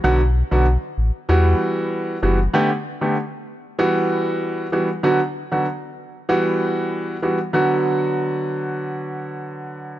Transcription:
<<
  \new Staff \with { instrumentName = "Grand piano" } { \time 4/4 \key b \minor \tempo 4 = 96 <d fis b fis'>16 r8 <d fis b fis'>16 r4 <e g b fis'>4. <e g b fis'>16 r16 | <d a b g'>16 r8 <d a b g'>16 r4 <e g b fis'>4. <e g b fis'>16 r16 | <d fis b fis'>16 r8 <d fis b fis'>16 r4 <e g b fis'>4. <e g b fis'>16 r16 | <d fis b fis'>1 | }
  \new Staff \with { instrumentName = "Sub bass" } { \clef bass \time 4/4 \key b \minor b,,8. b,,8 r16 a,,16 r16 e,8 r4 fis,,8 | r1 | r1 | r1 | }
>>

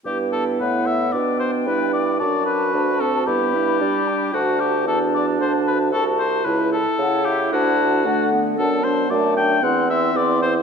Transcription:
<<
  \new Staff \with { instrumentName = "Flute" } { \time 4/4 \key g \major \tempo 4 = 113 g''4 fis''4 g''2 | a''2 b''4 b''8 g''8 | a''4 a''4 a''4 a''4~ | a''8 r8 fis''8 e''8 a''4 fis''4 |
a''8 a''8 a''8 a''8 c'''8 c'''8 c'''8 c'''8 | }
  \new Staff \with { instrumentName = "Oboe" } { \time 4/4 \key g \major g'8 a'8 b'8 e''8 d''8 c''8 b'8 d''8 | d''8 b'4 a'8 g'2 | fis'8 g'8 a'8 d''8 c''8 b'8 a'8 c''8 | b'8 a'4 g'8 fis'4. r8 |
a'8 c''8 d''8 g''8 fis''8 e''8 d''8 c''8 | }
  \new Staff \with { instrumentName = "Clarinet" } { \time 4/4 \key g \major e'2 d'2 | fis'2 e'8 d'4. | fis'4 d'2 fis'4 | e'8 r8 e'2 d'8 b8~ |
b4 a4 c'2 | }
  \new Staff \with { instrumentName = "French horn" } { \time 4/4 \key g \major b2. e'4 | d'4 d'8 c'8 b8 e'8 d'4 | d'4 fis'2. | e'4. r8 d'4 a4 |
d'8 d'8 d'8 d'8 e'8 e'8 e'8 e'8 | }
  \new Staff \with { instrumentName = "Bassoon" } { \clef bass \time 4/4 \key g \major g,4 a,4 b,4 g,4 | fis,4 d,4 g,4 g4 | d,4 e,4 d,4 c,4 | cis,8 r8 cis4 d,4 d4 |
fis,4 fis,4 e,4 e,4 | }
>>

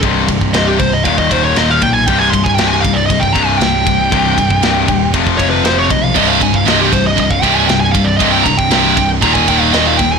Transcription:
<<
  \new Staff \with { instrumentName = "Lead electric guitar" } { \time 4/4 \key c \minor \tempo 4 = 118 r4 ees''16 g'16 c''16 ees''16 f''16 ees''16 c''16 des''16 ees''16 f''16 g''16 aes''16 | g''16 aes''16 c'''16 aes''16 g''16 aes''16 f''16 d''16 ees''16 g''16 bes''16 aes''16 g''4~ | g''2 r8 des''16 b'16 c''16 des''16 ees''16 f''16 | ees''16 f''16 aes''16 f''16 ees''16 g'16 c''16 ees''16 ees''16 f''16 g''16 aes''16 g''16 aes''16 f''16 d''16 |
ees''16 g''16 bes''16 g''4 r16 bes''16 aes''16 g''16 f''16 ees''16 f''16 g''16 aes''16 | }
  \new Staff \with { instrumentName = "Distorted electric guitar" } { \clef bass \time 4/4 \key c \minor <c, g, c>8 <c, g,>8 <c, g, c>8 <c, g,>8 <ees, bes, ees>8 <ees, bes, ees>8 <ees, bes, ees>8 <ees, bes,>8 | <c, g, c>8 <c, g,>8 <c, g, c>8 <c, g,>8 <c, g,>8 <c, g, c>8 <c, g,>8 <c, g,>8 | <c, g, c>8 <c, g,>8 <c, g, c>8 <c, g,>8 <f, c f>8 <f, c f>8 <f, c f>8 <f, c>8 | <c, g, c>8 <c, g,>8 <c, g, c>8 <c, g,>8 <c, g,>8 <c, g, c>8 <c, g,>8 <c, g,>8 |
<c, g, c>8 <c, g,>8 <c, g, c>8 <c, g,>8 <ees, bes, ees>8 <ees, bes, ees>8 <ees, bes, ees>8 <ees, bes,>8 | }
  \new Staff \with { instrumentName = "Distorted electric guitar" } { \clef bass \time 4/4 \key c \minor r1 | r1 | r1 | <c, g, c>8 <c, g,>8 <c, g, c>8 <c, g,>8 <c, g,>8 <c, g, c>8 <c, g,>8 <c, g,>8 |
<c, g, c>8 <c, g,>8 <c, g, c>8 <c, g,>8 <ees, bes, ees>8 <ees, bes, ees>8 <ees, bes, ees>8 <ees, bes,>8 | }
  \new Staff \with { instrumentName = "Distorted electric guitar" } { \clef bass \time 4/4 \key c \minor <c, g, c>2 <ees, bes, ees>4 <ees, bes, ees>4 | <c, g, c>2~ <c, g, c>8 <c, g, c>8 <c, g, c>4 | <c, g, c>2 <f, c f>4 <f, c f>4 | <c, g, c>2~ <c, g, c>8 <c, g, c>8 <c, g, c>4 |
<c, g, c>2 <ees, bes, ees>4 <ees, bes, ees>4 | }
  \new Staff \with { instrumentName = "Picked electric bass" } { \clef bass \time 4/4 \key c \minor c,,8 c,,8 c,,8 c,,8 ees,,8 ees,,8 ees,,8 b,,8 | c,,8 c,,8 c,,8 c,,8 c,,8 c,,8 c,,8 c,,8 | c,,8 c,,8 c,,8 ees,,8 f,,8 f,,8 f,,8 b,,8 | c,,8 c,,8 c,,8 c,,8 c,,8 c,,8 c,,8 c,,8 |
c,,8 c,,8 c,,8 c,,8 ees,,8 ees,,8 ees,,8 ees,,8 | }
  \new DrumStaff \with { instrumentName = "Drums" } \drummode { \time 4/4 <bd cymr>8 <bd cymr>16 bd16 <cymr sn>8 <bd cymr>8 <bd cymr>16 bd16 <bd cymr>8 <cymr sn>8 <bd cymr>8 | <bd cymr>8 <bd cymr>16 bd16 <cymr sn>8 <bd cymr>8 <bd cymr>16 bd16 <bd cymr>8 <cymr sn>8 <bd cymr>8 | <bd cymr>8 <bd cymr>16 bd16 <cymr sn>8 <bd cymr>8 <bd cymr>16 bd16 <bd cymr>8 <cymr sn>8 <bd cymr>8 | <cymc bd>8 <bd cymr>16 bd16 <cymr sn>8 <bd cymr>8 <bd cymr>16 bd16 <bd cymr>8 <cymr sn>8 <bd cymr>8 |
<bd cymr>8 <bd cymr>16 bd16 <cymr sn>8 <bd cymr>8 <bd cymr>16 bd16 <bd cymr>8 <cymr sn>8 <bd cymr>8 | }
>>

